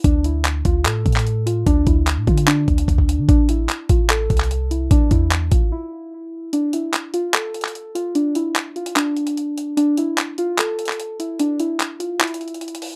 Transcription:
0.04 D2 D4, kick, closed hi-hat
0.24 E4, closed hi-hat
0.45 clap, closed hi-hat
0.65 D2 F4, kick, closed hi-hat
0.85 A2 A4, clap, closed hi-hat
1.06 A2, kick, closed hi-hat
1.12 clap, closed hi-hat
1.19 closed hi-hat
1.27 closed hi-hat
1.46 F4, closed hi-hat
1.66 D2 D4, kick, closed hi-hat
1.87 D2 E4, kick, closed hi-hat
2.07 clap, closed hi-hat
2.17 A2
2.27 D3 F4, kick, closed hi-hat
2.38 closed hi-hat
2.47 D4, clap, closed hi-hat
2.68 D2, kick, closed hi-hat
2.78 closed hi-hat
2.88 D2, kick, closed hi-hat
2.98 kick
3.09 closed hi-hat
3.19 D3
3.28 A1 D4, kick, closed hi-hat
3.49 E4, closed hi-hat
3.69 clap, closed hi-hat
3.89 A1 F4, kick, closed hi-hat
4.10 A4, clap, closed hi-hat
4.30 C2, kick, closed hi-hat
4.37 clap, closed hi-hat
4.44 closed hi-hat
4.51 closed hi-hat
4.71 E4, closed hi-hat
4.91 A1 D4, kick, closed hi-hat
5.11 E2 E4, kick, closed hi-hat
5.31 clap, closed hi-hat
5.51 A1 F4, kick, closed hi-hat
5.72 E4
6.53 D4, closed hi-hat
6.73 E4, closed hi-hat
6.94 clap, closed hi-hat
7.14 F4, closed hi-hat
7.34 A4, clap, closed hi-hat
7.54 closed hi-hat
7.61 clap, closed hi-hat
7.68 closed hi-hat
7.75 closed hi-hat
7.95 F4, closed hi-hat
8.15 D4, closed hi-hat
8.35 E4, closed hi-hat
8.56 clap, closed hi-hat
8.76 F4, closed hi-hat
8.86 closed hi-hat
8.96 D4, clap, closed hi-hat
9.17 closed hi-hat
9.27 closed hi-hat
9.37 closed hi-hat
9.58 closed hi-hat
9.77 D4, closed hi-hat
9.97 E4, closed hi-hat
10.18 clap, closed hi-hat
10.38 F4, closed hi-hat
10.58 A4, clap, closed hi-hat
10.79 closed hi-hat
10.85 clap, closed hi-hat
10.92 closed hi-hat
11.00 closed hi-hat
11.19 E4, closed hi-hat
11.39 D4, closed hi-hat
11.60 E4, closed hi-hat
11.80 clap, closed hi-hat
12.00 F4, closed hi-hat
12.21 E4, clap, closed hi-hat
12.27 closed hi-hat
12.34 closed hi-hat
12.41 closed hi-hat
12.48 closed hi-hat
12.54 closed hi-hat
12.61 closed hi-hat
12.68 closed hi-hat
12.75 closed hi-hat
12.82 open hi-hat

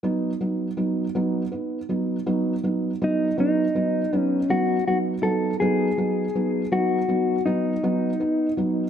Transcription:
0.03 F#3 B3 D#4
0.41 F#3 B3 D#4
0.77 F#3 B3 D#4
1.15 F#3 B3 D#4
1.52 B3 D#4
1.89 F#3 B3 D#4
2.26 F#3 B3 D#4
2.63 F#3 B3 D#4
3.02 F#3 B3 D#4
3.38 F#3 B3 D#4
3.75 F#3 B3 D#4
4.13 F#3 B3 D#4
4.18 C#4
4.49 F#3 B3 D#4 F#4
4.88 F#3 B3 D#4 F#4
5.23 F#3 B3 D#4 A4
5.60 F#3 B3 D#4 G#4
5.98 F#3 B3 D#4
6.35 F#3 B3 D#4
6.72 F#3 B3 D#4 F#4
7.08 F#3 B3 D#4
7.46 F#3 B3 D#4
7.83 F#3 B3 D#4
8.20 B3 D#4
8.57 F#3 B3 D#4

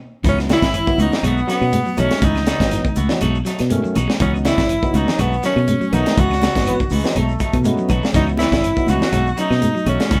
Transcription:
0.23 C#2 E3 F#3 B3 D#4 E4, muted clean electric guitar stroke, kick, closed hi-hat, low conga, shekere
0.28 C#4
0.39 snare, claves, shekere
0.49 C#3 E3 B3 D#4 E4 F#4, snare, closed hi-hat, high conga, shekere
0.53 E4
0.62 G#1, kick, snare, closed hi-hat, shekere
0.74 E3, closed hi-hat, claves, shekere
0.87 D#3 F#3 B3 D#4 E4, kick, shekere
0.98 C#2 E3 B3 D#4 F#4, closed hi-hat, high conga, shekere
1.12 E3, snare, low conga, shekere
1.23 B1 F#3 G#3 A3 B3 D#4 F#4, closed hi-hat, claves, shekere
1.38 shekere
1.47 F#3 A3 B3 C#4 D#4 F#4, muted clean electric guitar stroke, snare, closed hi-hat, shekere
1.51 B3
1.61 B2, claves, shekere
1.72 G#3, closed hi-hat, high conga, shekere
1.86 F#3, shekere
1.97 B1 F#3 A3 C#4 D#4 F#4, closed hi-hat, high conga, low conga, claves, shekere
2.10 G#3, snare, closed hi-hat, high conga, shekere
2.22 C#2 E3 B3 D#4 F#4, muted clean electric guitar stroke, kick, closed hi-hat, low conga, shekere
2.35 snare, claves, shekere
2.46 C#3 E3 B3 D#4 F#4, snare, closed hi-hat, high conga, shekere
2.60 G#1 E3 F#3 B3 D#4, kick, snare, closed hi-hat, shekere
2.71 E3, snare, closed hi-hat, claves, shekere
2.85 D#3, kick, high conga, shekere
2.96 C#2 E3 B3 F#4, closed hi-hat, high conga, shekere
3.09 E3 F#3 B3 D#4, snare, low conga, shekere
3.21 B1 F#3 G#3 A3 D#4 F#4, closed hi-hat, claves, shekere
3.35 shekere
3.45 F#3 A3 D#4, muted clean electric guitar stroke, snare, closed hi-hat, shekere
3.59 B2, snare, closed hi-hat, claves, shekere
3.70 D#3 F#3 G#3 A3 C#4, closed hi-hat, high conga, shekere
3.84 F#3, high conga, shekere
3.95 B1 F#3 D#4 F#4, closed hi-hat, high conga, low conga, claves, shekere
4.08 G#3, snare, shekere
4.19 C#2 E3 F#3 B3 C#4 D#4 F#4, kick, closed hi-hat, low conga, shekere
4.23 C#4
4.34 claves, shekere
4.45 C#3 E3 B3 D#4 E4 F#4, snare, closed hi-hat, high conga, shekere
4.58 G#1, kick, snare, closed hi-hat, shekere
4.69 E3, closed hi-hat, claves, shekere
4.83 D#3 E3 F#3 B3 D#4, kick, shekere
4.94 C#2 E3 B3 D#4 F#4, closed hi-hat, high conga, shekere
5.07 muted clean electric guitar stroke, snare, low conga, shekere
5.18 B1 F#3 G#3 A3 B3 F#4, muted clean electric guitar stroke, closed hi-hat, claves, shekere
5.33 shekere
5.43 D#3 F#3 A3 C#4 D#4 F#4, snare, closed hi-hat, shekere
5.56 B2, claves, shekere
5.68 G#3, closed hi-hat, high conga, shekere
5.81 F#3, high conga, shekere
5.92 B1 D#3 F#3 A3 B3 D#4 F#4, closed hi-hat, high conga, low conga, claves, shekere
6.06 G#3, snare, closed hi-hat, high conga, shekere
6.17 C#2 E3 B3 D#4 F#4, kick, closed hi-hat, low conga, shekere
6.30 snare, claves, shekere
6.42 C#3 E3 B3 D#4 F#4, snare, closed hi-hat, high conga, shekere
6.55 G#1 E3 F#3 B3 D#4, kick, snare, closed hi-hat, shekere
6.65 E3 B3, closed hi-hat, claves, shekere
6.80 D#3, kick, shekere
6.90 C#2 E3 G#3 B3 D#4 F#4, open hi-hat, high conga, shekere
7.03 E3 F#3 B3 D#4, snare, shekere
7.15 B1 F#3 G#3 A3 D#4, muted clean electric guitar stroke, closed hi-hat, claves, shekere
7.29 shekere
7.39 F#3 A3 D#4, kick, closed hi-hat, shekere
7.52 B2, kick, closed hi-hat, claves, shekere
7.64 F#3 G#3 A3 B3 C#4 D#4, closed hi-hat, high conga, shekere
7.78 F#3, high conga, shekere
7.89 B1 F#3 A3 D#4 F#4, kick, closed hi-hat, high conga, low conga, claves, shekere
8.03 G#3, snare, shekere
8.13 C#2 E3 F#3 B3 D#4 E4 F#4, kick, snare, closed hi-hat, low conga, shekere
8.27 claves, shekere
8.37 C#3 E3 B3 D#4 E4 F#4, snare, closed hi-hat, high conga, shekere
8.52 G#1, kick, snare, closed hi-hat, shekere
8.63 E3, closed hi-hat, claves, shekere
8.77 D#3 F#3 B3 D#4 E4, kick, shekere
8.87 C#2 E3 B3 D#4 F#4, closed hi-hat, high conga, shekere
9.00 E3, snare, low conga, shekere
9.12 B1 F#3 G#3 A3 D#4 F#4, closed hi-hat, claves, shekere
9.27 shekere
9.37 F#3 A3 C#4 D#4 F#4, closed hi-hat, shekere
9.41 D#4
9.50 B2, snare, claves, shekere
9.61 G#3, closed hi-hat, high conga, shekere
9.75 F#3, shekere
9.86 B1 F#3 A3 C#4 D#4 F#4, muted clean electric guitar stroke, closed hi-hat, high conga, low conga, claves, shekere
9.99 G#3, snare, closed hi-hat, shekere
10.10 C#2 E3 B3 D#4 F#4, kick, snare, closed hi-hat, low conga, shekere

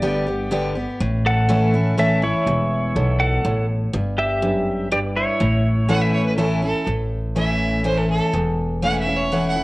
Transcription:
Already playing: G1 G2 G4 D5
0.02 D3 G3 B3 G4 B4 D5
0.26 B3 G4
0.51 D3 G3 B3 G4 B4 D5
0.75 B3 G4
1.00 A1 A2
1.26 A4 F#5
1.49 E3 A3 C#4 E4 A4 C#5
1.74 C#4 E4
1.97 E3 A3 C#4 E4 A4 C#5 E5
2.22 C#4 E4 C#5
2.47 E1 E2
2.96 B1 B2 E4 A4 C#5
3.20 A4 F#5
3.45 A1 A2 E4 A4 C#5
3.93 G1 G2
4.18 G4 E5
4.42 F#2 D4 G4 B4
4.92 G2 D4 G4 B4 D5
5.16 E4 C#5
5.40 A1 A2
5.88 E3 A3 C#4 E4 A4 C#5 F#5
5.96 B4
6.01 E5
6.14 C#5
6.26 B4
6.38 E3 A3 C#4 E4 A4 C#5
6.62 C#4 E4 A4
6.87 A1 A2
7.35 E3 A3 C#4 E4 A4 C#5 E5
7.84 E3 A3 C#4 E4 A4 C5 C#5
7.98 A4
8.10 A4
8.34 E1 E2
8.82 E3 A3 C#4 E4 A4 C#5 F#5
9.00 E5
9.07 C#4 E4
9.16 C#5
9.32 E3 A3 C#4 E4 A4 C#5 F#5
9.48 F#5
9.56 C#4 E4

